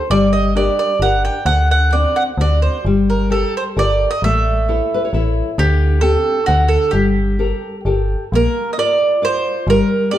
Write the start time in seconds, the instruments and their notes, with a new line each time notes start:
Already playing: mandolin C5
0.10 fm bass G1, nylon-string guitar G3, mandolin D5
0.33 mandolin D#5
0.55 nylon-string guitar D4 G4 A#4, mandolin D5
0.79 mandolin D5
1.00 fm bass G1, nylon-string guitar D4 G4 A#4, mandolin F#5
1.25 mandolin G5
1.46 fm bass D2, nylon-string guitar D3, mandolin F#5
1.71 mandolin F#5
1.93 nylon-string guitar C4 D4 F#4, mandolin D5
2.16 mandolin F#5
2.38 fm bass D2, nylon-string guitar C4 D4 F#4, mandolin D5
2.62 mandolin C5
2.85 fm bass G1, nylon-string guitar G3
3.10 mandolin A#4
3.30 nylon-string guitar G4 A4 A#4, mandolin A4
3.57 mandolin C5
3.77 fm bass G1, nylon-string guitar G4 A4 A#4, mandolin D5
4.11 mandolin D#5
4.22 fm bass A1, nylon-string guitar A3, mandolin E5
4.69 nylon-string guitar E4 A4 C#5
4.94 nylon-string guitar B4
5.05 nylon-string guitar C#5
5.13 fm bass A1, nylon-string guitar E4 A4 C#5 E5
5.58 fm bass D2, nylon-string guitar D3, mandolin G4
6.01 nylon-string guitar C4 D4 G4, mandolin A4
6.46 fm bass D2, nylon-string guitar D3, mandolin F#4
6.68 mandolin A4
6.91 fm bass G1, nylon-string guitar G3, mandolin G4
7.39 nylon-string guitar G4 A4 A#4
7.85 fm bass G1, nylon-string guitar G4 A4 A#4
8.32 fm bass A#1, nylon-string guitar A#3, mandolin A#4
8.73 mandolin D#5
8.78 nylon-string guitar F4 A#4 D5, mandolin D5
9.22 nylon-string guitar F4 A#4 D5, mandolin C5
9.67 fm bass G1, nylon-string guitar G3, mandolin A#4
10.11 nylon-string guitar G4 A#4 D5, mandolin D5